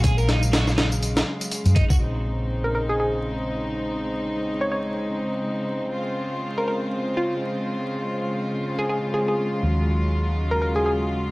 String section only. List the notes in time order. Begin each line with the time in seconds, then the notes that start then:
Already playing: C#3 F#3 G#3 F5
2.01 C#3 G#3 C4 D#4
5.95 F4
9.63 F#3